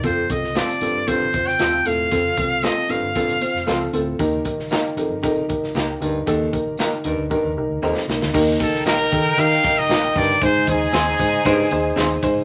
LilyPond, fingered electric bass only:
\new Staff \with { instrumentName = "Fingered electric bass" } { \clef bass \time 4/4 \key ees \lydian \tempo 4 = 116 f,,8 c,8. r16 a,,16 g,,16 a,,8 f,,8 ees,,8 e,,8 | f,8 c,8. r16 a,,16 g,,16 a,,8. f,,16 des,8 d,8 | ees,8 bes,,8. r16 a,,16 g,,16 bes,,8 a,,8 des,8 d,8 | ees,8 bes,,8. r16 ees,16 d,16 r16 ees,16 c,16 d,16 ees,16 r16 c,16 d,16 |
ees,8 bes,,8 bes,,8 ees8 ees8 bes,,8 bes,,8 g,,8 | aes,,8 ees,8 ees,8 aes,8 aes,8 ees,8 ees,8 a,,8 | }